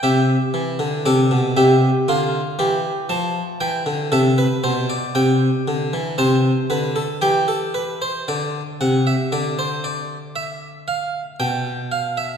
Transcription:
<<
  \new Staff \with { instrumentName = "Harpsichord" } { \time 4/4 \key c \major \tempo 4 = 58 << { e''4 d''8 e''8 f''4 a''8 g''8 | e''4 g''4 a''4 g''4 | d''8 fis''16 e''16 d''16 c''16 d''8 e''8 f''8 g''8 f''16 e''16 | } \\ { g'4 a'8 g'8 f'8 g'4. | a'16 b'16 c''16 d''4~ d''16 c''8 b'16 a'16 g'16 a'16 b'16 c''16 | r1 | } >> }
  \new Staff \with { instrumentName = "Harpsichord" } { \clef bass \time 4/4 \key c \major c8 e16 d16 c16 b,16 c8 d8 e8 f8 e16 d16 | c8 b,8 c8 d16 e16 c8 d8 e4 | d8 c8 d2 b,4 | }
>>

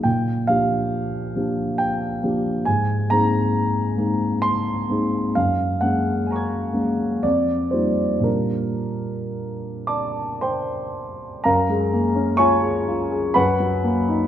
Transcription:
<<
  \new Staff \with { instrumentName = "Grand piano" } { \time 3/4 \key bes \major \tempo 4 = 64 << { r2. | r2. | r4 <aes'' bes'' des''' aes'''>4 r4 | r4. <d'' a''>8 <c'' g''>4 |
\key fis \major <ais' eis''>4 <cis'' gis''>4 <b' fis''>4 | } \\ { g''8 f''4. g''4 | aes''8 bes''4. c'''4 | f''8 ges''4. d''8 c''8 | bes'4. d'''8 c'''4 |
ais''4 cis'''4 b''4 | } >> }
  \new Staff \with { instrumentName = "Grand piano" } { \time 3/4 \key bes \major bes,8 <f bes d' g'>4 <f bes d' g'>4 <f bes d' g'>8 | aes,8 <aes bes c' ees'>4 <aes bes c' ees'>4 <aes bes c' ees'>8 | ges,8 <aes bes des' aes'>4 <aes bes des' aes'>8 f,8 <g bes ees' f'>8 | <bes, g bes d' f'>2. |
\key fis \major fis,16 gis16 ais16 cis'16 eis'16 gis'16 eis'16 gis'16 fis,16 fis16 ais16 dis'16 | }
>>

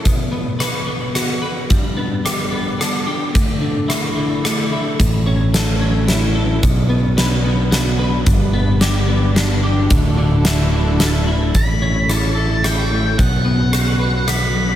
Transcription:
<<
  \new Staff \with { instrumentName = "Lead electric guitar" } { \time 3/4 \key d \major \tempo 4 = 110 r2. | r2. | r2. | r2. |
r2. | r2. | r2. | b''4 a''4 g''4 |
fis''2 b''4 | }
  \new Staff \with { instrumentName = "Clean electric guitar" } { \time 3/4 \key d \major b,8 b8 b'8 b8 fis'8 b'8 | g,8 b8 g'8 b8 d'8 g'8 | d,8 d8 e'8 d8 a8 e'8 | a,8 cis'8 a'8 cis'8 e'8 a'8 |
b,8 b8 b'8 b8 fis'8 b'8 | g,8 b8 g'8 b8 d'8 g'8 | d,8 d8 e'8 d8 a8 e'8 | a,8 cis'8 e'8 a'8 e'8 a8 |
b,8 b8 fis'8 b'8 fis'8 fis8 | }
  \new Staff \with { instrumentName = "String section" } { \time 3/4 \key d \major << { r2. | r2. | r2. | <e cis'>2. |
<fis cis'>2. | <g d'>2. | <d e' a'>2. | <a e'>2. |
<b fis'>2. | } \\ { r2. | r2. | r2. | a2. |
b2.~ | b2. | fis'2. | cis'2.~ |
cis'2. | } >> }
  \new Staff \with { instrumentName = "Picked electric bass" } { \clef bass \time 3/4 \key d \major r2. | r2. | r2. | a,,2. |
b,,2. | g,,2. | d,,2. | a,,2. |
b,,2. | }
  \new DrumStaff \with { instrumentName = "Drums" } \drummode { \time 3/4 <hh bd>4 <hh ss>4 <hh ss>4 | <hh bd>4 <hh ss>4 <hh ss>4 | <hh bd>4 <hh ss>4 <hh ss>4 | <hh bd>4 <hh sn>4 <hh sn>4 |
<hh bd>4 <hh sn>4 <hh sn>4 | <hh bd>4 <hh sn>4 <hh sn>4 | <hh bd>4 <hh sn>4 <hh sn>4 | <hh bd>4 <hh ss>4 <hh ss>4 |
<hh bd>4 <hh ss>4 <hh ss>4 | }
>>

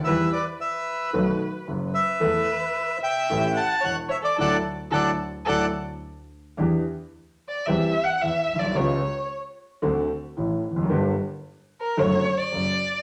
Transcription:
<<
  \new Staff \with { instrumentName = "Bandoneon" } { \time 4/4 \key d \major \tempo 4 = 111 e''8 d''8 e''4 r4. e''8~ | e''4. g''4 a''8 fis''8 e''16 d''16 | <a' d'' fis''>8 r8 <a' d'' fis''>8 r8 <a' d'' fis''>8 r4. | r1 |
r1 | r1 | }
  \new Staff \with { instrumentName = "Violin" } { \time 4/4 \key d \major b'8 b'8 b'2 r8 b'8~ | b'4. e''4 fis''8 cis''8 cis''16 a'16 | a'8 r8 a'8 r8 a'8 r4. | r4 \tuplet 3/2 { r4 d''8 e''4 fis''8 e''4 d''8 } |
cis''4 r2. | r4 \tuplet 3/2 { r4 bes'8 } cis''8. d''4~ d''16 | }
  \new Staff \with { instrumentName = "Grand piano" } { \clef bass \time 4/4 \key d \major <e, e g b g'>8 r4. <b,, b, dis a b fis'>8 r8 <fis,, fis,>8 r8 | <e, e a b a'>8 r4. <a,, a, e a cis' g'>8 r8 <e,, e,>8 r8 | <a, d fis>8 r8 <a, d fis>8 r8 <a, d fis>8 r4. | <e, e b d' g'>8 r4. <e, e g c' g'>8 r8 <e, e>8 r32 bes,,32 b,,32 c,32 |
<cis, cis gis b eis'>8 r4. <d, d a c' fis'>8 r8 <a,, a,>8 r32 e,32 f,32 fis,32 | <g,, g, d g bes g'>8 r4. <fis, d fis a cis' fis'>8 r8 <fis, fis>8 r8 | }
  \new Staff \with { instrumentName = "Double bass" } { \clef bass \time 4/4 \key d \major e,8 r4. b,,8 r8 fis,,8 r8 | e,8 r4. a,,8 r8 e,,8 r8 | d,8 r8 d,8 r8 d,8 r4. | e,8 r4. e,8 r8 e,8 b,,8 |
cis,8 r4. d,8 r8 a,,8 f,,8 | g,,8 r4. fis,,8 r8 fis,,8 r8 | }
>>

